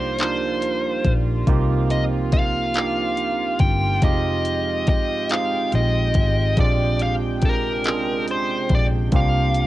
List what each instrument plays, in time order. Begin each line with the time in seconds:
Already playing: fingered electric bass C2, string section F3 G3 F4 D5, tine electric piano A#3 D4 D#4 F4 G4, lead electric guitar C5
0.19 tine electric piano A#3 D4 D#4 F4 A#4, lead electric guitar C5, clap, closed hi-hat
0.62 fingered electric bass D2, closed hi-hat
1.05 fingered electric bass A#1, kick, closed hi-hat
1.47 fingered electric bass C2, tine electric piano A#3 C4 D#4 F4 G4, string section A#3 C4, kick, closed hi-hat
1.90 lead electric guitar D#5, closed hi-hat
2.32 lead electric guitar F5, kick, closed hi-hat
2.74 tine electric piano A#3 D4 D#4 F4 G4, clap, closed hi-hat
3.17 closed hi-hat
3.59 fingered electric bass G1, lead electric guitar G5, kick, closed hi-hat
4.02 fingered electric bass F1, tine electric piano G#3 C4 D#4 F4 G4, string section G#3 G5, lead electric guitar D#5, kick, closed hi-hat
4.45 closed hi-hat
4.87 fingered electric bass G1, lead electric guitar D#5, kick, closed hi-hat
5.29 tine electric piano G#3 C4 D#4 F4 G#4, lead electric guitar F5, clap, closed hi-hat
5.72 fingered electric bass A#1, lead electric guitar D#5, closed hi-hat
6.14 fingered electric bass G#1, kick, closed hi-hat
6.57 fingered electric bass A#1, string section C3 D4, tine electric piano G#3 C4 D4 F4 G4, lead electric guitar D5, kick, closed hi-hat
6.99 lead electric guitar F5, closed hi-hat
7.42 lead electric guitar A#4, kick, closed hi-hat
7.84 tine electric piano G#3 C4 C#4 F4 G#4, clap, closed hi-hat
7.93 tine electric piano D4
8.28 lead electric guitar C5, closed hi-hat
8.70 fingered electric bass A#1, kick, closed hi-hat
8.75 lead electric guitar D5
9.12 fingered electric bass C2, tine electric piano A#3 C4 D4 F4 G4, string section A#3 F4, kick, closed hi-hat
9.16 lead electric guitar F5
9.55 closed hi-hat